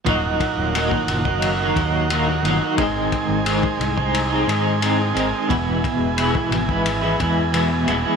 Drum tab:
RD |x-x-x-x-x-x-x-x-|x-x-x-x-x-x-x-x-|x-x-x-x-x-x-x-x-|
BD |o-o--o-o--o-----|o-o--o-o--------|o-o--o-o--o-----|